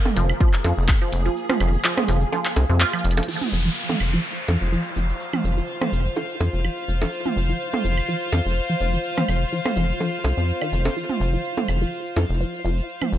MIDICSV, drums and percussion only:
0, 0, Header, 1, 2, 480
1, 0, Start_track
1, 0, Key_signature, -4, "minor"
1, 0, Tempo, 480000
1, 1365, Time_signature, 4, 2, 24, 8
1, 13182, End_track
2, 0, Start_track
2, 0, Title_t, "Drums"
2, 55, Note_on_c, 9, 45, 82
2, 55, Note_on_c, 9, 61, 56
2, 155, Note_off_c, 9, 45, 0
2, 155, Note_off_c, 9, 61, 0
2, 165, Note_on_c, 9, 42, 90
2, 165, Note_on_c, 9, 82, 81
2, 265, Note_off_c, 9, 42, 0
2, 265, Note_off_c, 9, 82, 0
2, 295, Note_on_c, 9, 76, 72
2, 305, Note_on_c, 9, 82, 41
2, 395, Note_off_c, 9, 76, 0
2, 405, Note_off_c, 9, 82, 0
2, 405, Note_on_c, 9, 36, 113
2, 411, Note_on_c, 9, 82, 52
2, 505, Note_off_c, 9, 36, 0
2, 511, Note_off_c, 9, 82, 0
2, 535, Note_on_c, 9, 39, 61
2, 635, Note_off_c, 9, 39, 0
2, 645, Note_on_c, 9, 42, 85
2, 645, Note_on_c, 9, 61, 75
2, 649, Note_on_c, 9, 82, 74
2, 745, Note_off_c, 9, 42, 0
2, 745, Note_off_c, 9, 61, 0
2, 749, Note_off_c, 9, 82, 0
2, 778, Note_on_c, 9, 82, 40
2, 878, Note_off_c, 9, 82, 0
2, 882, Note_on_c, 9, 82, 46
2, 885, Note_on_c, 9, 36, 116
2, 885, Note_on_c, 9, 39, 93
2, 982, Note_off_c, 9, 82, 0
2, 985, Note_off_c, 9, 36, 0
2, 985, Note_off_c, 9, 39, 0
2, 1120, Note_on_c, 9, 82, 91
2, 1125, Note_on_c, 9, 42, 89
2, 1220, Note_off_c, 9, 82, 0
2, 1225, Note_off_c, 9, 42, 0
2, 1260, Note_on_c, 9, 82, 40
2, 1360, Note_off_c, 9, 82, 0
2, 1367, Note_on_c, 9, 82, 55
2, 1467, Note_off_c, 9, 82, 0
2, 1495, Note_on_c, 9, 37, 68
2, 1495, Note_on_c, 9, 45, 83
2, 1499, Note_on_c, 9, 82, 34
2, 1595, Note_off_c, 9, 37, 0
2, 1595, Note_off_c, 9, 45, 0
2, 1599, Note_off_c, 9, 82, 0
2, 1605, Note_on_c, 9, 42, 90
2, 1605, Note_on_c, 9, 76, 69
2, 1605, Note_on_c, 9, 82, 91
2, 1705, Note_off_c, 9, 42, 0
2, 1705, Note_off_c, 9, 76, 0
2, 1705, Note_off_c, 9, 82, 0
2, 1740, Note_on_c, 9, 82, 37
2, 1839, Note_off_c, 9, 82, 0
2, 1839, Note_on_c, 9, 82, 52
2, 1844, Note_on_c, 9, 39, 91
2, 1939, Note_off_c, 9, 82, 0
2, 1944, Note_off_c, 9, 39, 0
2, 1975, Note_on_c, 9, 37, 65
2, 1975, Note_on_c, 9, 45, 84
2, 1975, Note_on_c, 9, 61, 54
2, 2075, Note_off_c, 9, 37, 0
2, 2075, Note_off_c, 9, 45, 0
2, 2075, Note_off_c, 9, 61, 0
2, 2084, Note_on_c, 9, 42, 94
2, 2091, Note_on_c, 9, 82, 87
2, 2184, Note_off_c, 9, 42, 0
2, 2191, Note_off_c, 9, 82, 0
2, 2210, Note_on_c, 9, 82, 42
2, 2310, Note_off_c, 9, 82, 0
2, 2322, Note_on_c, 9, 82, 47
2, 2324, Note_on_c, 9, 61, 56
2, 2422, Note_off_c, 9, 82, 0
2, 2424, Note_off_c, 9, 61, 0
2, 2452, Note_on_c, 9, 82, 33
2, 2454, Note_on_c, 9, 39, 64
2, 2552, Note_off_c, 9, 82, 0
2, 2554, Note_off_c, 9, 39, 0
2, 2562, Note_on_c, 9, 82, 89
2, 2564, Note_on_c, 9, 42, 90
2, 2564, Note_on_c, 9, 61, 76
2, 2662, Note_off_c, 9, 82, 0
2, 2664, Note_off_c, 9, 42, 0
2, 2664, Note_off_c, 9, 61, 0
2, 2700, Note_on_c, 9, 82, 41
2, 2799, Note_off_c, 9, 82, 0
2, 2799, Note_on_c, 9, 82, 48
2, 2804, Note_on_c, 9, 39, 93
2, 2899, Note_off_c, 9, 82, 0
2, 2904, Note_off_c, 9, 39, 0
2, 2934, Note_on_c, 9, 76, 70
2, 2939, Note_on_c, 9, 82, 38
2, 3034, Note_off_c, 9, 76, 0
2, 3039, Note_off_c, 9, 82, 0
2, 3040, Note_on_c, 9, 82, 87
2, 3044, Note_on_c, 9, 42, 57
2, 3109, Note_off_c, 9, 42, 0
2, 3109, Note_on_c, 9, 42, 66
2, 3140, Note_off_c, 9, 82, 0
2, 3173, Note_off_c, 9, 42, 0
2, 3173, Note_on_c, 9, 42, 81
2, 3173, Note_on_c, 9, 82, 41
2, 3174, Note_on_c, 9, 61, 76
2, 3228, Note_off_c, 9, 42, 0
2, 3228, Note_on_c, 9, 42, 90
2, 3273, Note_off_c, 9, 82, 0
2, 3274, Note_off_c, 9, 61, 0
2, 3284, Note_on_c, 9, 49, 81
2, 3289, Note_on_c, 9, 82, 48
2, 3328, Note_off_c, 9, 42, 0
2, 3384, Note_off_c, 9, 49, 0
2, 3389, Note_off_c, 9, 82, 0
2, 3414, Note_on_c, 9, 45, 78
2, 3514, Note_off_c, 9, 45, 0
2, 3525, Note_on_c, 9, 82, 92
2, 3625, Note_off_c, 9, 82, 0
2, 3649, Note_on_c, 9, 82, 37
2, 3749, Note_off_c, 9, 82, 0
2, 3770, Note_on_c, 9, 82, 48
2, 3870, Note_off_c, 9, 82, 0
2, 3894, Note_on_c, 9, 45, 78
2, 3894, Note_on_c, 9, 61, 54
2, 3994, Note_off_c, 9, 45, 0
2, 3994, Note_off_c, 9, 61, 0
2, 4002, Note_on_c, 9, 82, 85
2, 4004, Note_on_c, 9, 76, 62
2, 4102, Note_off_c, 9, 82, 0
2, 4104, Note_off_c, 9, 76, 0
2, 4137, Note_on_c, 9, 82, 38
2, 4237, Note_off_c, 9, 82, 0
2, 4242, Note_on_c, 9, 82, 48
2, 4342, Note_off_c, 9, 82, 0
2, 4375, Note_on_c, 9, 82, 36
2, 4475, Note_off_c, 9, 82, 0
2, 4479, Note_on_c, 9, 82, 79
2, 4484, Note_on_c, 9, 61, 74
2, 4579, Note_off_c, 9, 82, 0
2, 4584, Note_off_c, 9, 61, 0
2, 4619, Note_on_c, 9, 82, 38
2, 4717, Note_off_c, 9, 82, 0
2, 4717, Note_on_c, 9, 82, 42
2, 4817, Note_off_c, 9, 82, 0
2, 4850, Note_on_c, 9, 82, 36
2, 4950, Note_off_c, 9, 82, 0
2, 4963, Note_on_c, 9, 82, 79
2, 5063, Note_off_c, 9, 82, 0
2, 5095, Note_on_c, 9, 82, 40
2, 5195, Note_off_c, 9, 82, 0
2, 5202, Note_on_c, 9, 82, 49
2, 5302, Note_off_c, 9, 82, 0
2, 5334, Note_on_c, 9, 45, 77
2, 5334, Note_on_c, 9, 76, 60
2, 5434, Note_off_c, 9, 45, 0
2, 5434, Note_off_c, 9, 76, 0
2, 5446, Note_on_c, 9, 82, 90
2, 5546, Note_off_c, 9, 82, 0
2, 5575, Note_on_c, 9, 82, 38
2, 5675, Note_off_c, 9, 82, 0
2, 5679, Note_on_c, 9, 82, 45
2, 5779, Note_off_c, 9, 82, 0
2, 5815, Note_on_c, 9, 37, 58
2, 5815, Note_on_c, 9, 45, 78
2, 5815, Note_on_c, 9, 61, 55
2, 5915, Note_off_c, 9, 37, 0
2, 5915, Note_off_c, 9, 45, 0
2, 5915, Note_off_c, 9, 61, 0
2, 5928, Note_on_c, 9, 82, 87
2, 6028, Note_off_c, 9, 82, 0
2, 6061, Note_on_c, 9, 82, 42
2, 6161, Note_off_c, 9, 82, 0
2, 6164, Note_on_c, 9, 82, 55
2, 6165, Note_on_c, 9, 61, 56
2, 6264, Note_off_c, 9, 82, 0
2, 6265, Note_off_c, 9, 61, 0
2, 6290, Note_on_c, 9, 82, 37
2, 6390, Note_off_c, 9, 82, 0
2, 6404, Note_on_c, 9, 82, 85
2, 6405, Note_on_c, 9, 61, 76
2, 6504, Note_off_c, 9, 82, 0
2, 6505, Note_off_c, 9, 61, 0
2, 6532, Note_on_c, 9, 82, 36
2, 6632, Note_off_c, 9, 82, 0
2, 6644, Note_on_c, 9, 82, 48
2, 6646, Note_on_c, 9, 76, 62
2, 6744, Note_off_c, 9, 82, 0
2, 6746, Note_off_c, 9, 76, 0
2, 6777, Note_on_c, 9, 82, 35
2, 6877, Note_off_c, 9, 82, 0
2, 6888, Note_on_c, 9, 82, 93
2, 6988, Note_off_c, 9, 82, 0
2, 7014, Note_on_c, 9, 82, 42
2, 7016, Note_on_c, 9, 61, 75
2, 7114, Note_off_c, 9, 82, 0
2, 7116, Note_off_c, 9, 61, 0
2, 7121, Note_on_c, 9, 82, 56
2, 7221, Note_off_c, 9, 82, 0
2, 7256, Note_on_c, 9, 45, 75
2, 7356, Note_off_c, 9, 45, 0
2, 7375, Note_on_c, 9, 82, 84
2, 7475, Note_off_c, 9, 82, 0
2, 7493, Note_on_c, 9, 82, 36
2, 7593, Note_off_c, 9, 82, 0
2, 7605, Note_on_c, 9, 82, 50
2, 7705, Note_off_c, 9, 82, 0
2, 7736, Note_on_c, 9, 45, 79
2, 7736, Note_on_c, 9, 61, 57
2, 7836, Note_off_c, 9, 45, 0
2, 7836, Note_off_c, 9, 61, 0
2, 7849, Note_on_c, 9, 82, 95
2, 7950, Note_off_c, 9, 82, 0
2, 7974, Note_on_c, 9, 82, 37
2, 7976, Note_on_c, 9, 76, 61
2, 8074, Note_off_c, 9, 82, 0
2, 8076, Note_off_c, 9, 76, 0
2, 8079, Note_on_c, 9, 82, 53
2, 8179, Note_off_c, 9, 82, 0
2, 8222, Note_on_c, 9, 82, 36
2, 8322, Note_off_c, 9, 82, 0
2, 8325, Note_on_c, 9, 61, 79
2, 8326, Note_on_c, 9, 82, 82
2, 8425, Note_off_c, 9, 61, 0
2, 8426, Note_off_c, 9, 82, 0
2, 8460, Note_on_c, 9, 82, 42
2, 8560, Note_off_c, 9, 82, 0
2, 8568, Note_on_c, 9, 82, 51
2, 8668, Note_off_c, 9, 82, 0
2, 8693, Note_on_c, 9, 82, 37
2, 8793, Note_off_c, 9, 82, 0
2, 8805, Note_on_c, 9, 82, 83
2, 8905, Note_off_c, 9, 82, 0
2, 8934, Note_on_c, 9, 82, 37
2, 9034, Note_off_c, 9, 82, 0
2, 9040, Note_on_c, 9, 82, 51
2, 9140, Note_off_c, 9, 82, 0
2, 9175, Note_on_c, 9, 37, 58
2, 9175, Note_on_c, 9, 45, 75
2, 9275, Note_off_c, 9, 37, 0
2, 9275, Note_off_c, 9, 45, 0
2, 9283, Note_on_c, 9, 82, 94
2, 9285, Note_on_c, 9, 76, 59
2, 9383, Note_off_c, 9, 82, 0
2, 9385, Note_off_c, 9, 76, 0
2, 9418, Note_on_c, 9, 82, 38
2, 9518, Note_off_c, 9, 82, 0
2, 9528, Note_on_c, 9, 82, 47
2, 9628, Note_off_c, 9, 82, 0
2, 9655, Note_on_c, 9, 37, 55
2, 9655, Note_on_c, 9, 45, 73
2, 9655, Note_on_c, 9, 61, 58
2, 9657, Note_on_c, 9, 82, 34
2, 9755, Note_off_c, 9, 37, 0
2, 9755, Note_off_c, 9, 45, 0
2, 9755, Note_off_c, 9, 61, 0
2, 9757, Note_off_c, 9, 82, 0
2, 9767, Note_on_c, 9, 82, 83
2, 9867, Note_off_c, 9, 82, 0
2, 9900, Note_on_c, 9, 82, 39
2, 10000, Note_off_c, 9, 82, 0
2, 10005, Note_on_c, 9, 61, 57
2, 10006, Note_on_c, 9, 82, 48
2, 10105, Note_off_c, 9, 61, 0
2, 10106, Note_off_c, 9, 82, 0
2, 10135, Note_on_c, 9, 82, 34
2, 10235, Note_off_c, 9, 82, 0
2, 10244, Note_on_c, 9, 61, 76
2, 10245, Note_on_c, 9, 82, 93
2, 10344, Note_off_c, 9, 61, 0
2, 10345, Note_off_c, 9, 82, 0
2, 10370, Note_on_c, 9, 82, 40
2, 10470, Note_off_c, 9, 82, 0
2, 10483, Note_on_c, 9, 82, 47
2, 10583, Note_off_c, 9, 82, 0
2, 10614, Note_on_c, 9, 82, 38
2, 10615, Note_on_c, 9, 76, 58
2, 10714, Note_off_c, 9, 82, 0
2, 10715, Note_off_c, 9, 76, 0
2, 10726, Note_on_c, 9, 82, 88
2, 10826, Note_off_c, 9, 82, 0
2, 10855, Note_on_c, 9, 61, 77
2, 10857, Note_on_c, 9, 82, 40
2, 10955, Note_off_c, 9, 61, 0
2, 10957, Note_off_c, 9, 82, 0
2, 10968, Note_on_c, 9, 82, 52
2, 11068, Note_off_c, 9, 82, 0
2, 11095, Note_on_c, 9, 45, 72
2, 11195, Note_off_c, 9, 45, 0
2, 11206, Note_on_c, 9, 82, 88
2, 11306, Note_off_c, 9, 82, 0
2, 11336, Note_on_c, 9, 82, 34
2, 11436, Note_off_c, 9, 82, 0
2, 11446, Note_on_c, 9, 82, 48
2, 11546, Note_off_c, 9, 82, 0
2, 11574, Note_on_c, 9, 45, 75
2, 11574, Note_on_c, 9, 61, 54
2, 11674, Note_off_c, 9, 45, 0
2, 11674, Note_off_c, 9, 61, 0
2, 11677, Note_on_c, 9, 82, 82
2, 11684, Note_on_c, 9, 76, 67
2, 11777, Note_off_c, 9, 82, 0
2, 11784, Note_off_c, 9, 76, 0
2, 11809, Note_on_c, 9, 82, 36
2, 11909, Note_off_c, 9, 82, 0
2, 11924, Note_on_c, 9, 82, 49
2, 12024, Note_off_c, 9, 82, 0
2, 12061, Note_on_c, 9, 82, 32
2, 12161, Note_off_c, 9, 82, 0
2, 12165, Note_on_c, 9, 61, 75
2, 12173, Note_on_c, 9, 82, 85
2, 12265, Note_off_c, 9, 61, 0
2, 12273, Note_off_c, 9, 82, 0
2, 12296, Note_on_c, 9, 82, 33
2, 12396, Note_off_c, 9, 82, 0
2, 12410, Note_on_c, 9, 82, 54
2, 12510, Note_off_c, 9, 82, 0
2, 12540, Note_on_c, 9, 82, 35
2, 12640, Note_off_c, 9, 82, 0
2, 12648, Note_on_c, 9, 82, 85
2, 12748, Note_off_c, 9, 82, 0
2, 12779, Note_on_c, 9, 82, 39
2, 12879, Note_off_c, 9, 82, 0
2, 12887, Note_on_c, 9, 82, 48
2, 12987, Note_off_c, 9, 82, 0
2, 13015, Note_on_c, 9, 45, 73
2, 13015, Note_on_c, 9, 76, 68
2, 13115, Note_off_c, 9, 45, 0
2, 13115, Note_off_c, 9, 76, 0
2, 13131, Note_on_c, 9, 82, 79
2, 13182, Note_off_c, 9, 82, 0
2, 13182, End_track
0, 0, End_of_file